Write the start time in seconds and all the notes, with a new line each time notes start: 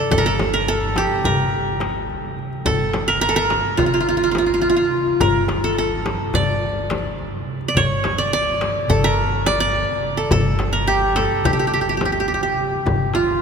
Already playing: A4 D5
0.11 G1 A4, darbuka dum, frame drum
0.18 A#4
0.26 A4, darbuka ka
0.39 darbuka tek, frame drum
0.54 A#4
0.68 A4
0.96 G4, darbuka tek, frame drum
1.24 G1 A#4, darbuka dum, frame drum
1.39 darbuka ka
1.80 darbuka tek, frame drum
2.10 darbuka ka
2.38 darbuka ka
2.53 darbuka ka
2.65 G1 A4, frame drum, darbuka dum
2.80 darbuka ka
2.93 darbuka tek, frame drum
3.08 A#4
3.21 A#4
3.29 A4
3.36 A#4
3.50 darbuka tek, frame drum
3.77 G1 F4, frame drum, darbuka dum
3.86 F4
3.94 F4
4.00 F4
4.09 F4
4.17 F4
4.24 F4
4.31 F4, darbuka tek, frame drum
4.38 F4
4.46 F4
4.54 F4
4.61 F4, darbuka ka
4.70 F4
4.77 F4
5.06 darbuka ka
5.20 G1 A#4, darbuka dum, frame drum
5.35 darbuka ka
5.48 darbuka tek, frame drum
5.64 A4
5.78 A4
6.06 darbuka tek, frame drum
6.34 G1 D5, darbuka dum, frame drum
6.90 darbuka tek, frame drum
7.19 darbuka ka
7.61 darbuka ka
7.68 D5
7.75 G1 C#5, darbuka dum, frame drum
7.90 darbuka ka
8.04 darbuka tek, frame drum
8.18 D5
8.33 D5
8.61 darbuka tek, frame drum
8.88 G1 A4, darbuka dum, frame drum
9.04 A#4
9.46 D5, darbuka tek, frame drum
9.60 D5
9.74 darbuka ka
10.17 A4, darbuka ka
10.31 G1 A4, frame drum, darbuka dum
10.46 darbuka ka
10.59 darbuka tek, frame drum
10.73 A#4
10.87 G4
11.16 A4, darbuka tek, frame drum
11.44 G1 G4, darbuka dum, frame drum
11.53 G4
11.59 G4, darbuka ka
11.67 G4
11.73 G4
11.81 G4
11.89 G4
11.97 G4, darbuka tek, frame drum
12.05 G4
12.12 G4
12.20 G4
12.28 G4, darbuka ka
12.34 G4
12.43 G4
12.58 darbuka ka
12.73 darbuka ka
12.86 G1, darbuka dum, frame drum
13.00 darbuka ka
13.14 F4, darbuka tek, frame drum